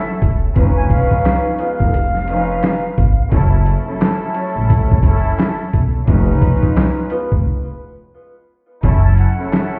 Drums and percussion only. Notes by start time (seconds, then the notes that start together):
0.22 kick, closed hi-hat
0.56 kick, closed hi-hat
0.90 kick, closed hi-hat
1.11 kick
1.25 snare, clap, closed hi-hat
1.59 closed hi-hat
1.80 kick
1.94 closed hi-hat
2.15 snare
2.28 closed hi-hat
2.63 snare, clap, closed hi-hat
2.98 kick, closed hi-hat
3.32 kick, closed hi-hat
3.66 closed hi-hat
4.01 snare, clap, closed hi-hat
4.34 closed hi-hat
4.70 kick, closed hi-hat
4.92 kick
5.03 kick, closed hi-hat
5.39 snare, clap, closed hi-hat
5.73 kick, closed hi-hat
6.07 kick, closed hi-hat
6.42 kick, closed hi-hat
6.63 kick
6.76 snare, clap, closed hi-hat
7.10 closed hi-hat
7.32 kick
8.83 kick, closed hi-hat
9.18 closed hi-hat
9.52 snare, clap, closed hi-hat